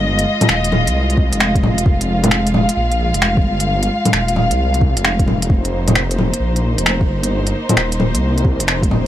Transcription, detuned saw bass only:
X:1
M:4/4
L:1/16
Q:"Swing 16ths" 1/4=132
K:Fm
V:1 name="Detuned saw bass" clef=bass
G,,,2 z2 E,,,3 C,,4 F,,,4- F,,, | F,,,6- F,,, z B,,,3 F,,,3 G,,,2- | G,,,2 z2 E,,,3 C,,4 F,,, F,,,4 | F,,,6- F,,, z B,,,3 F,,,3 G,,,2- |
G,,,2 z2 E,,,3 C,,4 F,,,4- F,,, |]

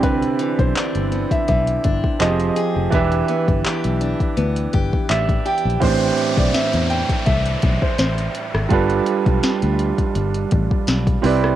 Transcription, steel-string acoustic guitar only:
X:1
M:4/4
L:1/8
Q:"Swing 16ths" 1/4=83
K:Am
V:1 name="Steel-string acoustic guitar"
C, E, D B, E, D F, _A | E, B, G D B, G D G | z8 | z8 |]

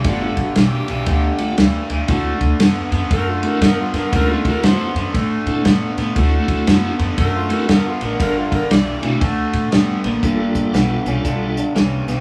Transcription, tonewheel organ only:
X:1
M:4/4
L:1/8
Q:"Swing" 1/4=118
K:Ddor
V:1 name="Tonewheel organ"
[A,B,DFG] z4 [A,B,DFG] z2 | [A,CDE^F] z4 [A,CDEF] z2 | [_A,B,^C_EF] [=A,=CD=E^F]2 z2 [A,CDEA] z2 | [A,CDE^F]3 z2 [A,CDEF] z2 |
z3 [A,CDE^F] z4 | [G,DFA]4- [G,DFA] z3 |]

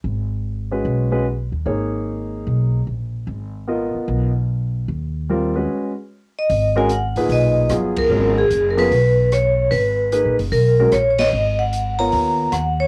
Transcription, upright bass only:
X:1
M:4/4
L:1/8
Q:"Swing" 1/4=149
K:G#dor
V:1 name="Upright bass" clef=bass
G,,,4 B,,,3 D,, | G,,,4 B,,,2 A,,,2 | G,,,3 z B,,,4 | D,,4 z4 |
G,,,3 D,, B,,,2 =G,,,2 | G,,,2 F,,,2 B,,,4 | G,,,2- (3G,,, A,,, F,,, B,,,2 A,,,2 | G,,,4 D,,2 D,,2 |]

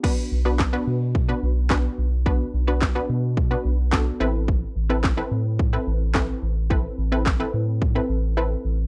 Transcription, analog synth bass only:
X:1
M:4/4
L:1/8
Q:1/4=108
K:Bphr
V:1 name="Analog synth bass" clef=bass
z B,,,2 B,,2 B,,,2 B,,,- | B,,, B,,,2 B,,2 B,,,2 A,,,- | A,,, A,,,2 A,,2 A,,,2 A,,,- | A,,, A,,,2 A,,2 A,,,2 A,,, |]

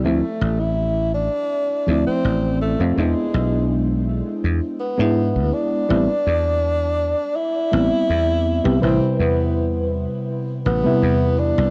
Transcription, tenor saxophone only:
X:1
M:4/4
L:1/16
Q:1/4=82
K:Am
V:1 name="Tenor saxophone"
A,3 E3 D4- D C3 A,2 | ^G,6 z4 B,4 D2- | D8 E8 | C2 B,4 z4 B,4 D2 |]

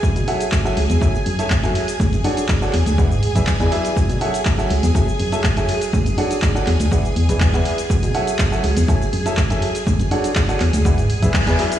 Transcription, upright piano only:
X:1
M:4/4
L:1/16
Q:1/4=122
K:F#m
V:1 name="Upright piano"
z2 [F,FAcef] z2 [F,FAcef] z2 [F,FAceg] z2 [F,FAcea] z [F,FAceg] z2 | z2 [D,FAcdf] z2 [FAcdf] z2 [E,EGBdf] z2 [E,EGBde] z [E,EGBdg] [F,EGBde] z | z2 [F,FAcef] z2 [F,FAcef] z2 [F,FAceg] z2 [F,FAcea] z [F,FAceg] z2 | z2 [D,FAcdf] z2 [FAcdf] z2 [E,EGBdf] z2 [E,EGBdg] z [E,EGBdf] z2 |
z2 [F,FAcef] z2 [F,FAcef] z2 [F,FAceg] z2 [F,FAcea] z [F,FAceg] z2 | z2 [D,FAcdf] z2 [FAcdf] z2 [E,EGBdf] z2 [E,EGBde] z [E,EGBdg] [F,EGBde] z |]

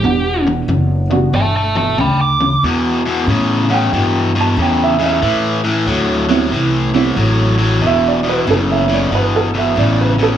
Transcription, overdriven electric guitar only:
X:1
M:4/4
L:1/8
Q:"Swing" 1/4=92
K:Em
V:1 name="Overdriven electric guitar" clef=bass
[E,,B,,] [E,,B,,] [E,,^C,] [E,,C,] [E,,B,,] [E,,B,,] [E,,C,] [E,,C,] | [E,,B,,] [E,,B,,] [E,,^C,] [E,,C,] [E,,B,,] [E,,B,,] [E,,C,] [E,,C,] | [A,,E,] [A,,E,] [A,,F,] [A,,F,] [A,,E,] [A,,E,] [A,,F,] [A,,F,] | [E,,B,,] [E,,B,,] [E,,^C,] [E,,C,] [E,,B,,] [E,,B,,] [E,,C,] [E,,C,] |]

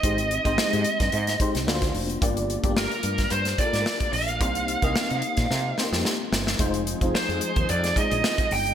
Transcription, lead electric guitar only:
X:1
M:4/4
L:1/8
Q:"Swing 16ths" 1/4=110
K:Cm
V:1 name="Lead electric guitar"
e4- e z3 | z2 B2 c d2 f- | f4- f z3 | z2 c2 d e2 g |]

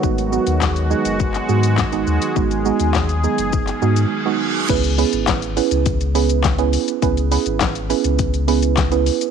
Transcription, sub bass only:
X:1
M:4/4
L:1/16
Q:1/4=103
K:C#m
V:1 name="Sub bass" clef=bass
G,,,3 D,,4 F,,,3 G,,3 G,,, D,, z | G,,,3 D,,4 F,,,3 G,,2 z4 | C,,3 G,,,4 C,,8- C,, | C,,3 G,,,4 C,,8- C,, |]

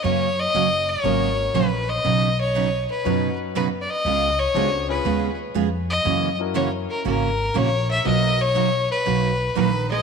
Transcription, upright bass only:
X:1
M:4/4
L:1/8
Q:"Swing" 1/4=120
K:B
V:1 name="Upright bass" clef=bass
F,,2 F,,,2 G,,,2 A,,,2 | B,,,4 F,,4 | C,,2 C,,2 D,,2 ^E,,2 | F,,4 G,,,2 A,,,2 |
B,,,4 B,,,2 A,,,2 |]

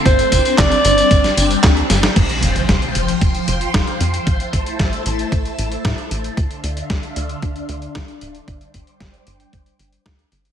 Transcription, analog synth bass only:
X:1
M:4/4
L:1/8
Q:1/4=114
K:F
V:1 name="Analog synth bass" clef=bass
G,,, G,,, G,,, G,,, G,,, G,,, D,, G,,, | F,,, F,,, F,,, F,,, F,,, F,,, F,,, F,, | A,,, A,,, A,,, A,,, A,,, A,,, A,, A,,, | D,, D,, D,, D,, D,, D,, D,, D,,, |
G,,, G,,, G,,, G,,, G,,, G,,, D,, G,,, |]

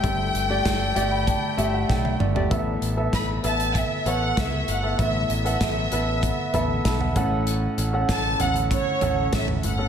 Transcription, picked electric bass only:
X:1
M:4/4
L:1/16
Q:1/4=97
K:Amix
V:1 name="Picked electric bass" clef=bass
G,,,2 G,,,2 G,,,2 G,,,3 z G,,,2 B,,,2 G,,,2 | A,,,2 A,,,2 A,,,2 A,,,3 z A,,,2 C,,2 G,,,2 | A,,,2 A,,,2 A,,,2 A,,,3 z A,,,2 B,,,2 A,,,2- | A,,,2 A,,,2 A,,,2 A,,,3 z A,,,2 A,,,2 G,,,2 |]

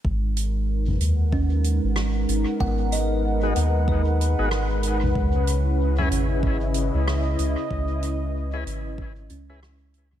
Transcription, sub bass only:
X:1
M:4/4
L:1/16
Q:"Swing 16ths" 1/4=94
K:G#m
V:1 name="Sub bass" clef=bass
G,,,6 D,,4- D,, G,,,3 G,,, z | G,,,6 D,,4- D,, G,,,4 B,,, | C,,6 G,,,4- G,,, C,,3 C,, z | C,,6 G,,,4 C,,6 |]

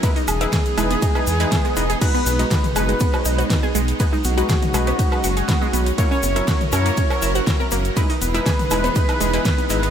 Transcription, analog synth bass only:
X:1
M:4/4
L:1/8
Q:1/4=121
K:B
V:1 name="Analog synth bass" clef=bass
z E,,, z E,,, z E,, z E,,, | z B,,, z F,,, z B,,, z B,,, | z B,,, z B,,, z F,,, z B,,, | z F,,, z F,, z F,,, z F,,, |
z E,,, z E,,, z E,,, z G,,, |]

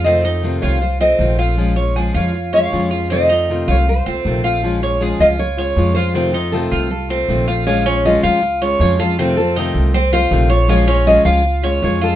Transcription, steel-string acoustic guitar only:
X:1
M:4/4
L:1/8
Q:1/4=158
K:Bbm
V:1 name="Steel-string acoustic guitar"
[C,E,=A,CF] [A,CF] [C,E,A,CF]2 z [A,CF] [C,E,A,CF] [A,CF] | [F,A,DF] [A,DF] [F,A,DF]2 z [A,DF] [F,A,DF] [A,F] | [C,E,=A,CF] [A,CF] [C,E,A,CF]2 z [A,CF] [C,E,A,CF] [A,CF] | [F,A,DF] [A,DF] [F,A,DF]2 z [A,DF] [F,A,DF] [A,DF] |
[C,E,=A,CF] [A,CF] [C,E,A,CF]2 z [A,CF] [C,E,A,CF] [A,CF] | [F,A,DF] [A,DF] [F,A,DF]2 z [A,DF] [F,A,DF] [A,DF] | [C,E,=A,CF] [A,F] [C,E,A,CF]2 z [A,CF] [C,E,A,CF] [A,CF] | [F,A,DF] [A,DF] [F,A,DF]2 z [A,DF] [F,A,DF] [A,DF] |]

